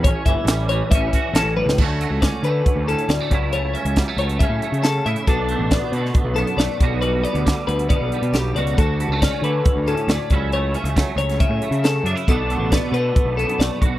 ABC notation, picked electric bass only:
X:1
M:4/4
L:1/16
Q:1/4=137
K:D
V:1 name="Picked electric bass" clef=bass
A,,, z G,,, z A,,,4 A,,,2 z2 A,,, A,,,2 C,, | D,,3 C,,2 z D,2 z D,,2 z D,, z C,,2- | C,,3 C,,2 z C,,3 A,, z C,3 A,, z | B,,,3 A,,,2 z B,,2 z B,,,2 z B,,, z B,,,2- |
B,,,3 D,,2 z D,,3 B,,, z B,, B,,,2 C,,2 | D,,3 C,,2 z D,2 z D,,2 z D,, z C,,2- | C,,3 C,,2 z C,,3 A,, z C,3 F,, z | B,,,3 A,,,2 z B,,2 z B,,,2 z B,,, z B,,,2 |]